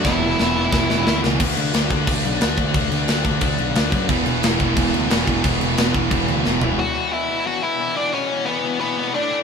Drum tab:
CC |--------|xxxxxxxx|xxxxxxxx|xxxxxxxx|
SD |o-o-oooo|--o---o-|--o---o-|--o---o-|
FT |--------|--------|--------|--------|
BD |o---o---|o--oo--o|o--oo--o|o--oo--o|

CC |xxxxxx--|--------|--------|
SD |--o---o-|--------|--------|
FT |-------o|--------|--------|
BD |o--oo---|--------|--------|